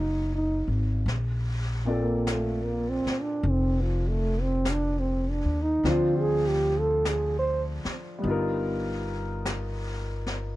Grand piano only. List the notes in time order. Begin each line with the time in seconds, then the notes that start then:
Already playing: A3 B3 C#4 D#4 F#4 F5
1.85 A#2 C4 F4 D5
1.90 A4
5.84 F3 C4 D4 F4 C5
8.19 G3 B3
8.24 D#4 F4
8.30 A#4